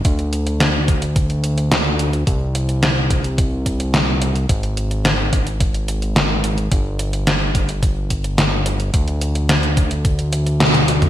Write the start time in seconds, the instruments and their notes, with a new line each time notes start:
0.05 analog synth bass D2, kick, closed hi-hat
0.19 closed hi-hat
0.33 closed hi-hat
0.47 closed hi-hat
0.60 snare, closed hi-hat
0.88 kick, closed hi-hat
1.02 closed hi-hat
1.16 kick, closed hi-hat
1.30 closed hi-hat
1.44 closed hi-hat
1.58 closed hi-hat
1.72 snare, closed hi-hat
1.99 closed hi-hat
2.13 closed hi-hat
2.27 analog synth bass C2, kick, closed hi-hat
2.55 closed hi-hat
2.69 closed hi-hat
2.83 snare, closed hi-hat
3.10 kick, closed hi-hat
3.24 closed hi-hat
3.38 kick, closed hi-hat
3.66 kick, closed hi-hat
3.80 closed hi-hat
3.94 snare, closed hi-hat
4.22 closed hi-hat
4.36 closed hi-hat
4.49 analog synth bass G#1, kick, closed hi-hat
4.63 closed hi-hat
4.77 closed hi-hat
4.91 closed hi-hat
5.05 snare, closed hi-hat
5.33 kick, closed hi-hat
5.47 closed hi-hat
5.60 kick, closed hi-hat
5.74 closed hi-hat
5.88 closed hi-hat
6.02 closed hi-hat
6.16 snare, closed hi-hat
6.44 closed hi-hat
6.58 closed hi-hat
6.72 analog synth bass G1, kick, closed hi-hat
6.99 closed hi-hat
7.13 closed hi-hat
7.27 snare, closed hi-hat
7.55 kick, closed hi-hat
7.69 closed hi-hat
7.83 kick, closed hi-hat
8.10 kick, closed hi-hat
8.24 closed hi-hat
8.38 snare, closed hi-hat
8.66 closed hi-hat
8.80 closed hi-hat
8.94 analog synth bass D2, kick, closed hi-hat
9.08 closed hi-hat
9.21 closed hi-hat
9.35 closed hi-hat
9.49 snare, closed hi-hat
9.63 closed hi-hat
9.77 kick, closed hi-hat
9.91 closed hi-hat
10.05 kick, closed hi-hat
10.19 closed hi-hat
10.33 closed hi-hat
10.47 closed hi-hat
10.60 snare, closed hi-hat, high tom
10.74 closed hi-hat, high tom
10.88 closed hi-hat
11.02 closed hi-hat, mid tom